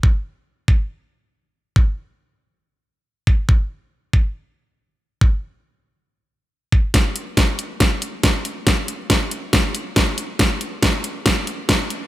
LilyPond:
\new DrumStaff \with { instrumentName = "Drums" } \drummode { \time 4/4 \tempo 4 = 139 bd4 r8 bd8 r4 r4 | bd4 r4 r4 r8 bd8 | bd4 r8 bd8 r4 r4 | bd4 r4 r4 r8 bd8 |
<hh bd sn>8 hh8 <hh bd sn>8 hh8 <hh bd sn>8 hh8 <hh bd sn>8 hh8 | <hh bd sn>8 hh8 <hh bd sn>8 hh8 <hh bd sn>8 hh8 <hh bd sn>8 hh8 | <hh bd sn>8 hh8 <hh bd sn>8 hh8 <hh bd sn>8 hh8 <hh bd sn>8 hh8 | }